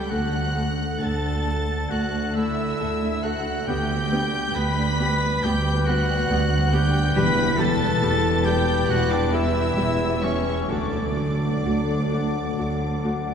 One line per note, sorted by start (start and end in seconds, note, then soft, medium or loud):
0.00 0.14 C#3 medium
0.00 0.10 G3 medium
0.00 0.31 A3 soft
0.00 0.14 B3 soft
0.00 0.12 G4 medium
0.00 0.76 A4 medium
0.00 0.14 B4 soft
0.00 0.11 G5 medium
0.00 1.45 A5 medium
0.09 0.91 D2 medium
0.09 3.67 D3 medium
0.09 0.19 A3 medium
0.09 3.64 A3 medium
0.09 0.73 F#4 medium
0.09 0.19 A4 medium
0.09 3.64 A4 medium
0.09 0.73 F#5 medium
0.09 1.01 F#5 medium
0.09 1.02 F#6 loud
0.32 3.23 A3 medium
0.55 0.64 A3 medium
0.55 1.00 D4 medium
0.55 0.63 A4 medium
0.78 2.79 A4 medium
1.00 1.81 D2 medium
1.00 1.08 A3 medium
1.00 3.01 D4 medium
1.00 1.09 A4 medium
1.00 1.92 A4 medium
1.00 1.91 A5 medium
1.00 1.93 A5 medium
1.00 1.92 A6 loud
1.24 1.68 D5 medium
1.47 1.55 A3 medium
1.47 1.55 A4 medium
1.69 2.13 D5 medium
1.89 2.69 D2 medium
1.89 2.70 D2 medium
1.89 2.00 A3 medium
1.89 2.35 F#4 medium
1.89 2.00 A4 medium
1.89 2.36 F#5 medium
1.89 2.37 F#5 medium
1.89 2.36 F#6 medium
2.14 2.57 D5 medium
2.34 2.44 A3 medium
2.34 3.26 E4 medium
2.34 2.44 A4 medium
2.34 3.24 E5 medium
2.34 3.71 A5 medium
2.34 3.24 E6 loud
2.38 3.23 E5 medium
2.80 3.57 D2 medium
2.80 2.89 A3 medium
2.80 3.71 A4 medium
2.80 2.89 A4 medium
3.02 3.45 D4 medium
3.23 3.31 A3 medium
3.23 3.71 A3 medium
3.23 3.67 F#4 medium
3.23 3.31 A4 medium
3.23 3.66 F#5 medium
3.23 3.68 F#5 medium
3.23 3.68 F#6 medium
3.46 4.11 D4 medium
3.67 4.45 D2 medium
3.67 7.20 D3 medium
3.67 6.99 G3 medium
3.67 3.76 B3 medium
3.67 4.57 G4 medium
3.67 3.76 G4 medium
3.67 6.99 B4 medium
3.67 4.56 G5 loud
3.67 4.54 G5 medium
3.67 4.54 G6 loud
3.91 6.94 G3 medium
4.12 4.20 B3 medium
4.12 6.73 D4 medium
4.12 4.20 G4 medium
4.35 6.50 B4 medium
4.55 5.33 D2 medium
4.55 5.34 D2 medium
4.55 4.64 B3 medium
4.55 4.64 G4 medium
4.55 5.46 B4 loud
4.55 5.44 B5 loud
4.55 5.43 B6 loud
4.79 6.08 D5 medium
4.99 5.08 B3 medium
4.99 5.07 G4 medium
5.43 6.20 D2 medium
5.43 5.52 B3 medium
5.43 5.87 G4 loud
5.43 5.52 G4 medium
5.43 5.88 G5 loud
5.43 5.87 G5 loud
5.43 5.87 G6 loud
5.86 5.96 G3 medium
5.86 5.95 B3 medium
5.86 6.75 F#4 loud
5.86 6.75 F#5 loud
5.86 6.74 F#5 loud
5.86 8.66 B5 medium
5.86 6.73 F#6 loud
6.09 7.20 D5 medium
6.30 7.06 D2 loud
6.30 6.38 G3 medium
6.30 6.38 B3 medium
6.52 8.00 B4 medium
6.72 6.80 B3 medium
6.72 7.20 D4 medium
6.72 6.80 G4 medium
6.72 7.03 G4 loud
6.72 7.18 G5 loud
6.72 7.16 G5 loud
6.72 7.16 G6 loud
6.95 7.57 G3 medium
7.15 7.91 E1 loud
7.15 7.92 E2 loud
7.15 10.73 E3 medium
7.15 7.24 G3 medium
7.15 10.65 G3 loud
7.15 7.24 G4 medium
7.15 7.59 B4 loud
7.15 10.66 B4 loud
7.15 7.59 B5 loud
7.15 7.57 B6 loud
7.37 10.44 E4 medium
7.57 10.22 G3 medium
7.57 7.67 G3 medium
7.57 7.67 G4 medium
7.57 8.46 A4 loud
7.57 8.47 A5 loud
7.57 8.46 A5 loud
7.57 8.45 A6 loud
7.79 8.22 G4 medium
8.01 8.79 E1 loud
8.01 8.79 E2 medium
8.01 8.10 G3 medium
8.01 8.10 G4 medium
8.01 9.76 B4 medium
8.23 9.54 G4 medium
8.45 8.53 G3 medium
8.45 8.92 G4 loud
8.45 8.53 G4 medium
8.45 8.88 G5 loud
8.45 8.92 G5 loud
8.45 8.87 G5 medium
8.45 8.89 G6 loud
8.67 9.10 B5 medium
8.88 9.67 E1 loud
8.88 9.67 E2 loud
8.88 8.97 G3 medium
8.88 9.13 F#4 loud
8.88 8.97 G4 medium
8.88 9.11 F#5 loud
8.88 9.14 F#5 loud
8.88 9.32 G5 medium
8.88 9.11 F#6 loud
9.10 9.35 D4 medium
9.10 9.33 D5 medium
9.10 9.34 D5 medium
9.10 10.73 B5 medium
9.10 9.33 D6 loud
9.33 9.41 G3 medium
9.33 10.25 E4 loud
9.33 9.41 G4 medium
9.33 10.23 E5 loud
9.33 10.25 E5 medium
9.33 10.73 G5 medium
9.33 10.23 E6 loud
9.56 9.99 G4 medium
9.76 10.58 E1 medium
9.76 10.58 E2 medium
9.76 9.84 G3 medium
9.76 9.84 G4 medium
9.76 10.73 B4 medium
10.00 10.73 G4 medium
10.22 10.30 G3 medium
10.22 10.73 G3 medium
10.22 10.71 C#4 medium
10.22 10.31 G4 medium
10.22 10.69 C#5 medium
10.22 10.56 C#5 medium
10.22 10.69 C#6 loud
10.45 10.73 E4 medium
10.69 11.53 D2 medium
10.69 13.34 D3 medium
10.69 13.34 F#3 medium
10.69 10.77 A3 medium
10.69 13.34 D4 medium
10.69 10.77 F#4 medium
10.69 13.34 A4 medium
10.69 13.34 D5 medium
10.69 13.34 D6 medium
10.93 13.34 A3 medium
11.16 11.25 A3 medium
11.16 13.34 D4 medium
11.16 11.24 F#4 medium
11.42 13.34 F#4 medium
11.64 12.47 D2 medium
11.64 11.73 A3 medium
11.64 11.73 F#4 medium
11.64 13.34 A4 medium
11.89 13.27 D5 medium
12.12 12.20 A3 medium
12.12 12.20 F#4 medium
12.12 12.57 F#5 medium
12.36 12.80 A5 medium
12.58 13.34 D2 medium
12.58 12.66 A3 medium
12.58 12.66 F#4 medium
12.58 13.03 F#5 medium
12.82 13.34 A5 medium
13.04 13.12 A3 medium
13.04 13.12 F#4 medium
13.04 13.34 F#5 medium
13.28 13.34 D5 medium